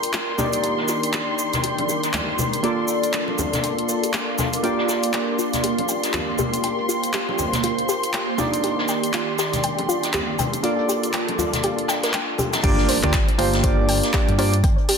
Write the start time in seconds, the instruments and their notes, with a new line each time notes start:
Already playing: synth keys A#3 D4 F4 G4 D5, string machine F4 A#4 D5 G5, violin section C6
0.03 closed hi-hat, cabasa
0.13 synth arpeggio sound F4, clap, closed hi-hat, cabasa
0.38 string machine D#3 D5, synth keys A#3 D4 D#4 G4 D5, synth arpeggio sound G4, snare, closed hi-hat, high bongo, high conga, cabasa
0.53 closed hi-hat, cabasa
0.64 synth arpeggio sound G5, closed hi-hat, cabasa
0.78 snare
0.88 synth arpeggio sound F4, snare, closed hi-hat, cabasa
1.03 closed hi-hat, cabasa
1.13 synth arpeggio sound G4, clap, closed hi-hat, cabasa
1.38 synth arpeggio sound G5, closed hi-hat, cabasa
1.53 snare, closed hi-hat, high conga, cabasa
1.64 synth arpeggio sound F4, closed hi-hat, cabasa
1.78 closed hi-hat, high bongo
1.89 synth arpeggio sound G4, closed hi-hat, cabasa
2.03 snare, closed hi-hat, cabasa
2.13 synth arpeggio sound G5, clap, closed hi-hat, low conga, cabasa
2.39 synth arpeggio sound F4, closed hi-hat, high conga, cabasa
2.53 closed hi-hat, high bongo, cabasa
2.63 synth keys A#3 D4 F4 A4 D5, string machine A#3 F4 A4 D5, synth arpeggio sound G4, closed hi-hat, cabasa
2.78 closed hi-hat
2.88 synth arpeggio sound G5, closed hi-hat, cabasa
3.03 closed hi-hat, cabasa
3.13 synth arpeggio sound F4, clap, closed hi-hat, cabasa
3.28 high bongo
3.38 synth arpeggio sound G4, closed hi-hat, low conga, cabasa
3.53 snare, closed hi-hat, high conga, cabasa
3.64 synth arpeggio sound G5, closed hi-hat, cabasa
3.79 closed hi-hat
3.89 synth arpeggio sound A#4, closed hi-hat, cabasa
4.04 synth arpeggio sound G4, closed hi-hat, cabasa
4.13 synth arpeggio sound G4, clap, closed hi-hat, cabasa
4.38 synth arpeggio sound G5, snare, closed hi-hat, high bongo, high conga, cabasa
4.53 closed hi-hat, cabasa
4.63 synth keys A#3 D4 F4 G4 D5, synth arpeggio sound F4, string machine G4, violin section C6, closed hi-hat, cabasa
4.79 snare
4.89 synth arpeggio sound G4, snare, closed hi-hat, cabasa
5.03 closed hi-hat, cabasa
5.13 synth arpeggio sound G5, clap, closed hi-hat, cabasa
5.39 synth arpeggio sound F4, closed hi-hat, cabasa
5.53 snare, closed hi-hat, high conga, cabasa
5.63 synth arpeggio sound G4, closed hi-hat, cabasa
5.79 closed hi-hat, high bongo
5.88 synth arpeggio sound G5, closed hi-hat, cabasa
6.04 snare, closed hi-hat, cabasa
6.13 synth arpeggio sound F4, clap, closed hi-hat, low conga, cabasa
6.38 synth arpeggio sound G4, closed hi-hat, high conga, cabasa
6.53 closed hi-hat, high bongo, cabasa
6.64 string machine C5, synth arpeggio sound G5, closed hi-hat, cabasa
6.78 closed hi-hat
6.89 synth arpeggio sound F4, closed hi-hat, cabasa
7.03 closed hi-hat, cabasa
7.13 synth arpeggio sound G4, clap, closed hi-hat, cabasa
7.29 high bongo
7.38 synth arpeggio sound G5, closed hi-hat, low conga, cabasa
7.53 snare, closed hi-hat, high conga, cabasa
7.63 synth arpeggio sound F4, closed hi-hat, cabasa
7.79 closed hi-hat
7.89 synth arpeggio sound G4, closed hi-hat, cabasa
8.03 closed hi-hat, cabasa
8.13 synth arpeggio sound G5, clap, closed hi-hat, cabasa
8.38 string machine D#3 G4 D5, synth keys A#3 D4 D#4 G4 D5, synth arpeggio sound F4, snare, closed hi-hat, high bongo, high conga, cabasa
8.54 closed hi-hat, cabasa
8.64 synth arpeggio sound G4, closed hi-hat, cabasa
8.79 snare
8.88 synth arpeggio sound G5, snare, closed hi-hat, cabasa
9.04 closed hi-hat, cabasa
9.13 synth arpeggio sound F4, clap, closed hi-hat, cabasa
9.38 synth arpeggio sound G4, snare, closed hi-hat, cabasa
9.53 snare, closed hi-hat, high conga, cabasa
9.63 synth arpeggio sound G5, closed hi-hat, cabasa
9.79 closed hi-hat, high bongo
9.89 synth arpeggio sound F4, closed hi-hat, cabasa
10.03 snare, closed hi-hat, cabasa
10.13 synth arpeggio sound G4, clap, closed hi-hat, low conga, cabasa
10.39 synth arpeggio sound G5, closed hi-hat, high conga, cabasa
10.53 closed hi-hat, high bongo, cabasa
10.63 synth keys A#3 D4 F4 A4 D5, synth arpeggio sound F4, string machine F4 A4 D5, closed hi-hat, cabasa
10.78 closed hi-hat
10.89 synth arpeggio sound G4, closed hi-hat, cabasa
11.03 closed hi-hat, cabasa
11.13 synth arpeggio sound G5, clap, closed hi-hat, cabasa
11.29 closed hi-hat, high bongo
11.38 synth arpeggio sound F4, closed hi-hat, low conga, cabasa
11.53 snare, closed hi-hat, high conga, cabasa
11.63 synth arpeggio sound G4, closed hi-hat, cabasa
11.79 closed hi-hat
11.88 synth arpeggio sound G5, snare, closed hi-hat, cabasa
12.03 synth arpeggio sound A#4, snare, closed hi-hat, cabasa
12.08 snare, closed hi-hat
12.13 synth arpeggio sound G5, clap, closed hi-hat, cabasa
12.38 synth arpeggio sound G4, closed hi-hat, high bongo, high conga, cabasa
12.53 snare, closed hi-hat, high bongo, cabasa
12.63 fingered electric bass G1, synth keys A#3 D4 F4 G4 D5, synth arpeggio sound G4, kick, closed hi-hat, crash, impact
12.78 snare
12.89 synth arpeggio sound C5, snare, closed hi-hat, open hi-hat
13.03 fingered electric bass D2, synth keys A#3 D4 F4 G4 D5, clap, closed hi-hat
13.13 synth arpeggio sound G5, kick, snare, clap, closed hi-hat
13.29 closed hi-hat
13.38 fingered electric bass G1, synth keys A#3 D4 F4 G4 C5, synth arpeggio sound G4, closed hi-hat, open hi-hat
13.54 snare, closed hi-hat
13.63 synth keys A#3 D4 F4 G4 D5, synth arpeggio sound C5, kick, closed hi-hat
13.89 synth arpeggio sound G5, closed hi-hat, open hi-hat
14.03 snare, closed hi-hat
14.13 synth keys F4 G4 D5, synth arpeggio sound G4, kick, snare, clap, closed hi-hat
14.28 fingered electric bass G2, closed hi-hat
14.38 synth keys A#3 D4 F4 G4 D5, synth arpeggio sound C5, closed hi-hat, open hi-hat
14.54 closed hi-hat
14.64 fingered electric bass G1, synth arpeggio sound G5, kick, closed hi-hat
14.78 closed hi-hat
14.89 synth arpeggio sound G4, closed hi-hat, open hi-hat